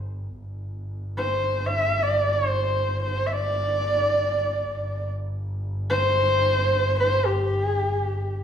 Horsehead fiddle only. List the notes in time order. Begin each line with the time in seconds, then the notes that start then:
1.17 C5
1.66 E5
2.03 D5
2.32 C5
3.03 C5
3.26 E5
3.32 D5
5.90 C5
7.00 C5
7.26 G4